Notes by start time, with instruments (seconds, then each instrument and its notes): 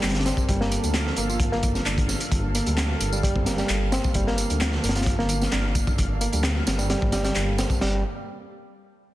Already playing: reed electric piano G3 A#3 C4 D4 G4, analog synth pad A#3 A4 D5
0.03 detuned saw bass G1, snare, clap, closed hi-hat, tambourine
0.09 snare, closed hi-hat
0.15 snare, closed hi-hat
0.21 snare, closed hi-hat
0.26 reed electric piano C4, snare, closed hi-hat, tambourine
0.37 kick, tambourine
0.49 detuned saw bass G1, reed electric piano G3, analog synth pad F5, kick, closed hi-hat, tambourine
0.61 reed electric piano A#3, snare
0.72 closed hi-hat, tambourine
0.84 detuned saw bass D2, closed hi-hat, tambourine
0.94 reed electric piano F3, snare, clap, closed hi-hat, tambourine
1.07 snare
1.16 detuned saw bass G1, reed electric piano A#3, closed hi-hat, tambourine
1.29 reed electric piano F4, tambourine
1.40 kick, closed hi-hat
1.52 detuned saw bass G1, reed electric piano A#3, snare
1.63 kick, closed hi-hat, tambourine
1.75 snare, tambourine
1.86 detuned saw bass G1, reed electric piano D4, clap, closed hi-hat, tambourine
1.98 kick, closed hi-hat
2.08 snare, tambourine
2.20 closed hi-hat, tambourine
2.32 detuned saw bass G1, kick, closed hi-hat, tambourine
2.55 reed electric piano A#3, closed hi-hat, tambourine
2.66 detuned saw bass D2, reed electric piano G3, closed hi-hat, tambourine
2.77 reed electric piano G4, snare, clap, closed hi-hat, tambourine
3.01 detuned saw bass G1, closed hi-hat, tambourine
3.13 reed electric piano G3, tambourine
3.23 reed electric piano G3, kick, closed hi-hat, tambourine
3.36 detuned saw bass G1, reed electric piano C4, kick
3.46 reed electric piano A#3, snare, closed hi-hat, tambourine
3.58 reed electric piano G3, snare, tambourine
3.69 detuned saw bass G1, clap, closed hi-hat, tambourine
3.92 reed electric piano C4, snare, closed hi-hat, tambourine
4.04 kick, tambourine
4.14 detuned saw bass G1, reed electric piano G3, kick, closed hi-hat, tambourine
4.27 reed electric piano A#3, snare
4.38 closed hi-hat, tambourine
4.50 detuned saw bass D2, closed hi-hat, tambourine
4.61 reed electric piano F3, snare, clap, closed hi-hat, tambourine
4.72 snare
4.84 detuned saw bass G1, reed electric piano A#3, closed hi-hat, tambourine
4.89 snare, closed hi-hat
4.95 reed electric piano F4, snare, closed hi-hat, tambourine
5.02 snare, closed hi-hat
5.06 kick, closed hi-hat, tambourine
5.19 detuned saw bass G1, reed electric piano A#3, snare
5.29 closed hi-hat, tambourine
5.42 snare, tambourine
5.52 detuned saw bass G1, reed electric piano D4, snare, clap, closed hi-hat, tambourine
5.75 kick, closed hi-hat, tambourine
5.87 kick, tambourine
5.98 detuned saw bass G1, kick, closed hi-hat, tambourine
6.21 reed electric piano A#3, closed hi-hat, tambourine
6.33 detuned saw bass D2, reed electric piano G3, closed hi-hat, tambourine
6.43 reed electric piano G4, snare, clap, closed hi-hat, tambourine
6.67 detuned saw bass G1, snare, closed hi-hat, tambourine
6.79 reed electric piano G3, tambourine
6.90 reed electric piano G3, snare, closed hi-hat, tambourine
7.02 detuned saw bass G1, reed electric piano C4, kick
7.12 reed electric piano G3, snare, closed hi-hat, tambourine
7.25 reed electric piano G3, snare, closed hi-hat, tambourine
7.36 detuned saw bass G1, clap, closed hi-hat, tambourine
7.58 reed electric piano C4, snare, closed hi-hat, tambourine
7.70 kick, tambourine
7.81 detuned saw bass G1, reed electric piano G3, snare, splash